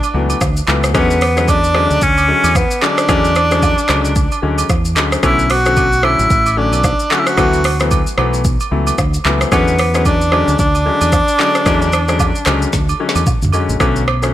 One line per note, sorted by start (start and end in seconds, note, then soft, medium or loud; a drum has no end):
0.00 0.68 D4 loud
0.00 high agogo medium
0.00 shaker soft
0.14 0.33 C#2 medium
0.14 0.35 E3 medium
0.14 0.35 F#3 medium
0.14 0.36 A3 medium
0.14 0.36 B3 medium
0.30 high agogo medium
0.30 shaker medium
0.41 0.60 D2 loud
0.41 kick loud
0.41 cross-stick medium
0.41 low woodblock medium
0.41 shaker medium
0.57 shaker medium
0.67 0.95 C#2 loud
0.67 0.89 E3 medium
0.67 0.89 F#3 medium
0.67 0.89 A3 medium
0.67 0.89 B3 medium
0.67 clap medium
0.67 high agogo medium
0.84 cross-stick loud
0.84 shaker medium
0.94 1.87 E2 loud
0.94 1.16 D3 medium
0.94 1.16 F#3 medium
0.94 1.16 G#3 medium
0.94 1.50 B3 loud
0.94 1.16 C#4 loud
0.94 kick loud
0.94 cross-stick loud
0.94 high agogo medium
0.94 shaker medium
1.10 shaker medium
1.21 cross-stick loud
1.21 open hi-hat medium
1.21 high agogo medium
1.36 1.56 D3 medium
1.36 1.56 F#3 medium
1.36 1.56 G#3 medium
1.36 1.56 C#4 medium
1.36 cross-stick medium
1.36 shaker soft
1.48 2.04 D4 loud
1.48 kick medium
1.48 high agogo medium
1.48 shaker medium
1.64 shaker medium
1.74 1.96 D3 medium
1.74 1.96 F#3 medium
1.74 1.96 G#3 medium
1.74 1.96 C#4 medium
1.74 cross-stick loud
1.74 high agogo medium
1.91 1.99 D2 medium
1.91 shaker medium
2.02 2.32 D2 medium
2.02 2.58 C#4 loud
2.02 kick loud
2.02 shaker medium
2.17 high agogo medium
2.17 shaker medium
2.28 2.50 D3 medium
2.28 2.50 F#3 medium
2.28 2.50 G#3 medium
2.28 2.50 C#4 medium
2.44 2.63 E2 loud
2.44 high agogo medium
2.44 shaker medium
2.55 2.84 B3 loud
2.55 kick loud
2.55 cross-stick medium
2.55 low woodblock medium
2.55 shaker medium
2.71 shaker medium
2.81 3.03 D3 medium
2.81 3.03 F#3 medium
2.81 3.03 G#3 medium
2.81 3.03 C#4 medium
2.81 4.97 D4 loud
2.81 clap medium
2.81 high agogo medium
2.98 cross-stick loud
2.98 shaker medium
3.09 3.75 E2 loud
3.09 3.30 D3 medium
3.09 3.30 F#3 medium
3.09 3.30 G#3 medium
3.09 3.30 C#4 loud
3.09 kick loud
3.09 cross-stick loud
3.09 high agogo medium
3.09 shaker medium
3.25 shaker medium
3.35 cross-stick loud
3.35 high agogo medium
3.35 shaker medium
3.51 3.70 D3 medium
3.51 3.70 F#3 medium
3.51 3.70 G#3 medium
3.51 3.70 C#4 medium
3.51 cross-stick medium
3.51 shaker medium
3.62 kick medium
3.62 high agogo medium
3.62 low woodblock medium
3.62 shaker medium
3.78 shaker medium
3.89 4.27 C#2 loud
3.89 4.10 D3 medium
3.89 4.10 F#3 medium
3.89 4.10 G#3 medium
3.89 4.11 C#4 medium
3.89 cross-stick loud
3.89 clap loud
3.89 high agogo medium
3.89 shaker medium
4.05 shaker medium
4.16 kick loud
4.16 shaker medium
4.32 high agogo medium
4.32 shaker soft
4.42 4.62 D2 medium
4.42 4.64 D3 medium
4.42 4.64 F#3 medium
4.42 4.64 G#3 medium
4.42 4.64 C#4 medium
4.58 high agogo medium
4.58 shaker medium
4.69 4.97 E2 medium
4.69 kick loud
4.69 cross-stick medium
4.69 low woodblock medium
4.69 shaker medium
4.85 shaker medium
4.95 5.16 D2 medium
4.95 5.17 D3 medium
4.95 5.18 F#3 medium
4.95 5.18 G#3 medium
4.95 5.18 C#4 medium
4.95 clap medium
4.95 high agogo medium
4.95 shaker medium
5.12 cross-stick loud
5.12 shaker medium
5.23 6.15 B1 loud
5.23 5.44 D3 medium
5.23 5.44 F#3 medium
5.23 5.44 A3 medium
5.23 5.45 C#4 loud
5.23 5.52 E4 loud
5.23 kick loud
5.23 cross-stick loud
5.23 high agogo medium
5.23 shaker medium
5.39 shaker medium
5.50 6.06 F#4 loud
5.50 cross-stick loud
5.50 open hi-hat medium
5.50 high agogo medium
5.65 5.85 D3 medium
5.65 5.85 F#3 medium
5.65 5.85 A3 medium
5.65 5.85 C#4 medium
5.65 cross-stick medium
5.65 shaker soft
5.77 kick medium
5.77 high agogo medium
5.77 shaker medium
5.92 shaker medium
6.03 6.25 D3 medium
6.03 6.25 F#3 medium
6.03 6.25 A3 medium
6.03 6.25 C#4 medium
6.03 6.60 E4 loud
6.03 cross-stick loud
6.03 high agogo medium
6.19 6.27 A1 medium
6.19 shaker medium
6.30 6.73 A1 loud
6.30 kick loud
6.30 shaker medium
6.46 high agogo medium
6.46 shaker medium
6.57 6.78 D3 medium
6.57 6.78 F#3 medium
6.57 6.78 A3 medium
6.57 6.78 C#4 medium
6.57 7.13 D4 medium
6.73 6.92 B1 medium
6.73 high agogo medium
6.73 shaker medium
6.84 kick loud
6.84 cross-stick medium
6.84 low woodblock medium
6.84 shaker medium
6.99 shaker medium
7.10 7.32 D3 medium
7.10 7.32 F#3 medium
7.10 7.32 A3 medium
7.10 7.32 C#4 medium
7.10 7.21 F#4 medium
7.10 clap medium
7.10 high agogo medium
7.20 7.29 E4 medium
7.27 7.91 F#4 loud
7.27 cross-stick loud
7.27 shaker medium
7.37 8.03 D2 loud
7.37 7.59 E3 loud
7.37 7.59 F#3 medium
7.37 7.59 A3 medium
7.37 7.59 B3 loud
7.37 kick loud
7.37 cross-stick loud
7.37 high agogo medium
7.37 shaker medium
7.53 shaker medium
7.64 cross-stick loud
7.64 open hi-hat medium
7.64 high agogo medium
7.80 7.99 E3 medium
7.80 7.99 F#3 medium
7.80 7.99 A3 medium
7.80 7.99 B3 medium
7.80 cross-stick loud
7.80 shaker medium
7.91 kick medium
7.91 high agogo medium
7.91 shaker medium
8.07 shaker medium
8.18 8.56 B1 medium
8.18 8.39 E3 medium
8.18 8.39 F#3 medium
8.18 8.39 A3 medium
8.18 8.39 B3 medium
8.18 cross-stick loud
8.18 high agogo medium
8.34 shaker medium
8.45 kick loud
8.45 shaker medium
8.60 high agogo medium
8.60 shaker soft
8.71 8.91 C#2 medium
8.71 8.93 E3 medium
8.71 8.93 F#3 medium
8.71 8.93 A3 medium
8.71 8.93 B3 medium
8.87 high agogo medium
8.87 shaker medium
8.98 9.17 D2 loud
8.98 kick loud
8.98 cross-stick medium
8.98 low woodblock medium
8.98 shaker medium
9.14 shaker medium
9.24 9.44 C#2 medium
9.24 9.46 E3 medium
9.24 9.46 F#3 medium
9.24 9.46 A3 medium
9.24 9.46 B3 medium
9.24 clap medium
9.24 high agogo medium
9.41 cross-stick loud
9.41 shaker medium
9.52 10.44 E2 loud
9.52 9.73 D3 medium
9.52 9.73 F#3 medium
9.52 9.73 G#3 medium
9.52 10.08 B3 loud
9.52 9.73 C#4 loud
9.52 kick loud
9.52 cross-stick loud
9.52 high agogo medium
9.52 shaker medium
9.68 shaker medium
9.79 cross-stick loud
9.79 open hi-hat medium
9.79 high agogo medium
9.94 10.13 D3 medium
9.94 10.13 F#3 medium
9.94 10.13 G#3 medium
9.94 10.13 C#4 medium
9.94 cross-stick medium
9.94 shaker medium
10.05 10.59 D4 loud
10.05 kick medium
10.05 high agogo medium
10.05 shaker medium
10.21 shaker medium
10.32 10.53 D3 medium
10.32 10.53 F#3 medium
10.32 10.53 G#3 medium
10.32 10.54 C#4 medium
10.32 cross-stick loud
10.32 high agogo medium
10.48 10.56 D2 medium
10.48 shaker medium
10.59 10.89 D2 medium
10.59 13.23 D4 loud
10.59 kick loud
10.59 shaker medium
10.75 high agogo medium
10.75 shaker medium
10.86 11.07 D3 medium
10.86 11.07 F#3 medium
10.86 11.07 G#3 medium
10.86 11.07 C#4 medium
11.01 11.20 E2 medium
11.01 high agogo medium
11.01 shaker medium
11.12 kick loud
11.12 cross-stick medium
11.12 low woodblock medium
11.12 shaker medium
11.28 shaker medium
11.38 11.60 D3 medium
11.38 11.60 F#3 medium
11.38 11.61 G#3 medium
11.38 11.61 C#4 medium
11.38 clap medium
11.38 high agogo medium
11.55 cross-stick loud
11.55 shaker medium
11.66 12.32 E2 loud
11.66 11.87 D3 medium
11.66 11.87 F#3 medium
11.66 11.87 G#3 medium
11.66 11.87 C#4 loud
11.66 kick loud
11.66 cross-stick loud
11.66 high agogo medium
11.66 shaker medium
11.82 shaker medium
11.93 cross-stick loud
11.93 high agogo medium
11.93 shaker medium
12.08 12.27 D3 medium
12.08 12.27 F#3 medium
12.08 12.27 G#3 medium
12.08 12.28 C#4 medium
12.08 cross-stick medium
12.08 shaker medium
12.20 kick medium
12.20 high agogo medium
12.20 low woodblock medium
12.20 shaker medium
12.35 shaker medium
12.46 12.65 C#2 loud
12.46 12.68 D3 medium
12.46 12.68 F#3 medium
12.46 12.68 G#3 medium
12.46 12.68 C#4 medium
12.46 cross-stick loud
12.46 clap loud
12.46 high agogo medium
12.46 shaker medium
12.62 shaker medium
12.73 12.92 D2 loud
12.73 kick loud
12.73 snare medium
12.73 shaker medium
12.89 high agogo medium
12.89 shaker soft
13.00 13.21 D3 medium
13.00 13.21 F#3 medium
13.00 13.21 G#3 medium
13.00 13.21 C#4 medium
13.09 snare medium
13.15 13.23 E2 medium
13.15 high agogo medium
13.15 shaker medium
13.27 kick loud
13.27 mid tom medium
13.27 low woodblock medium
13.27 shaker medium
13.42 13.50 D2 medium
13.42 floor tom loud
13.42 shaker medium
13.53 13.75 D3 medium
13.53 13.75 F#3 medium
13.53 13.75 G#3 medium
13.53 13.75 C#4 medium
13.53 high agogo medium
13.53 shaker medium
13.69 13.77 A1 medium
13.69 shaker medium
13.80 14.34 B1 loud
13.80 14.01 D3 medium
13.80 14.01 F#3 medium
13.80 14.02 A3 medium
13.80 14.02 C#4 loud
13.80 kick loud
13.80 cross-stick loud
13.80 high agogo medium
13.80 shaker medium
13.96 shaker medium
14.08 cross-stick loud
14.08 high agogo medium
14.22 14.34 D3 medium
14.22 14.34 F#3 medium
14.22 14.34 A3 medium
14.22 14.34 C#4 medium
14.22 cross-stick medium
14.22 shaker soft